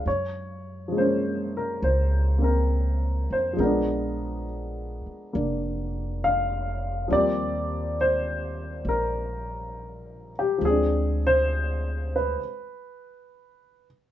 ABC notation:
X:1
M:4/4
L:1/8
Q:"Swing" 1/4=68
K:Eb
V:1 name="Upright piano"
_d2 c B c B2 c | B2 z4 f2 | d2 c2 B3 G | A c2 _c4 z |]
V:2 name="Upright piano"
z2 [F,A,B,_D]3 [B,C]3 | [F,A,_CD]4 [B,D]4 | [F,G,B,C]8 | [F,A,CD]4 z4 |]
V:3 name="Upright bass" clef=bass
_G,,4 _D,,3 F,, | B,,,3 z F,,,4 | E,,4 B,,,4 | D,,4 z4 |]